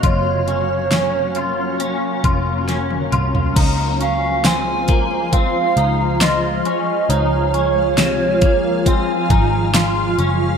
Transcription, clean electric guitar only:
X:1
M:4/4
L:1/8
Q:1/4=68
K:Db
V:1 name="Clean electric guitar"
F D D F D F D F | E D C B, C E F D | E D C, B, C E F D |]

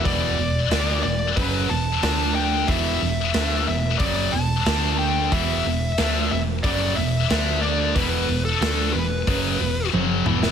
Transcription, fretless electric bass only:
X:1
M:4/4
L:1/8
Q:1/4=91
K:Ddor
V:1 name="Fretless electric bass" clef=bass
E,,, E,,, D,, E,,, ^F,,, E,,, D,,2 | E,,, E,,, D,, E,,, ^F,,, E,,, D,,2 | E,,, E,,, D,, E,,, ^F,,, E,,, D,,2 | E,,, E,,, D,, E,,, ^F,,, E,,, F,,, E,,, |]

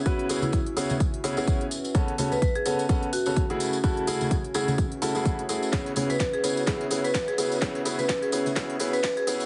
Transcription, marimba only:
X:1
M:4/4
L:1/16
Q:"Swing 16ths" 1/4=127
K:Alyd
V:1 name="Marimba"
F z2 E4 z8 z | z3 B B G G z3 F F z4 | F z4 z G6 z4 | z3 B B G G z4 B z G G z |
z3 B B G G z4 B z G G z |]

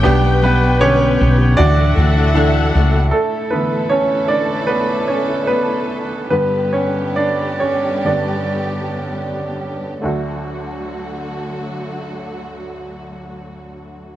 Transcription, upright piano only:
X:1
M:4/4
L:1/16
Q:1/4=72
K:D
V:1 name="Upright piano"
[B,DG]4 [D,B,G]4 [DEF]4 [DEA]4 | [A,A]2 [B,B]2 [Cc]2 [Dd]2 [B,B]2 [Cc]2 [B,B]3 z | B2 [Cc]2 [Dd]2 [Cc]2 [Dd]6 z2 | [A,DF]16 |]
V:2 name="Upright piano" clef=bass
B,,6 z2 A,,6 z2 | z2 [D,E,A,]12- [D,E,A,]2 | [G,,D,B,]6 z2 [G,,D,B,]2 z6 | D,,16 |]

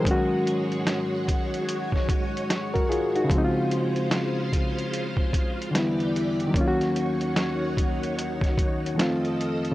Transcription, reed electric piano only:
X:1
M:4/4
L:1/16
Q:"Swing 16ths" 1/4=74
K:Abmix
V:1 name="Reed electric piano"
B z12 [GB] [FA] [EG]- | [EG] z12 z3 | z16 |]
V:2 name="Reed electric piano"
[E,G,A,DG]12- [E,G,A,DG]2 z2 | [D,F,A,CEF]12 [=D,=E,=G,=B,=E]4 | [E,G,B,DFG]12 [E,F,=A,CF]4 |]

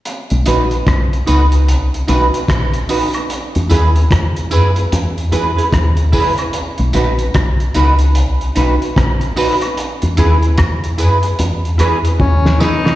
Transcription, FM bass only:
X:1
M:4/4
L:1/16
Q:"Swing 16ths" 1/4=74
K:B
V:1 name="FM bass" clef=bass
z B,,, A,,,2 B,,,2 C,,2 B,,,2 B,,, z A,,,2 z2 | z E,, D,,2 E,,2 F,,2 E,,2 E,, z D,,2 z2 | z B,,, A,,,2 B,,,2 C,,2 B,,,2 B,,, z A,,,2 z2 | z E,, D,,2 E,,2 F,,2 E,,2 E,, z D,,2 z2 |]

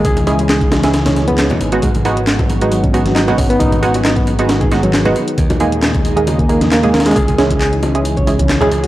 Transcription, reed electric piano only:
X:1
M:4/4
L:1/16
Q:"Swing 16ths" 1/4=135
K:G#m
V:1 name="Reed electric piano"
G4 G D z3 c z B,2 D z2 | G, z6 z F, C D z D B, C B, | D4 D B, z3 G z F,2 B, z2 | D, z6 z C, A, A, z A, G, A, G, |
G4 G D z3 c z C z G z F |]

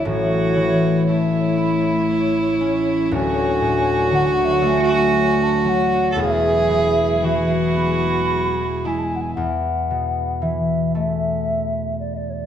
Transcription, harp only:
X:1
M:6/8
L:1/8
Q:3/8=38
K:Emix
V:1 name="Harp" clef=bass
[A,,,A,,] E, A, E2 C | [D,,,D,,] A,, D, A,2 F, | [E,,,E,,] B,, E, B,2 G, | E,, B,, E, A,3 |]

